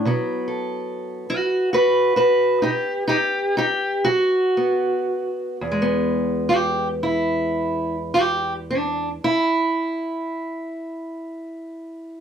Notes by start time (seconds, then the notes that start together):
0.05 B2 F#3 B3
0.48 A4
1.30 F#3 F#4 B4
1.73 F#4 B4
2.16 F#4 B4
2.62 B2 D#4 G4
3.08 D#4 G4
3.57 D#4 G4
4.04 F#3 F#4
4.57 B3
5.61 E2
5.72 G#3
5.82 B3
6.49 G4
7.03 E4
8.14 G4
8.71 D4
9.24 E4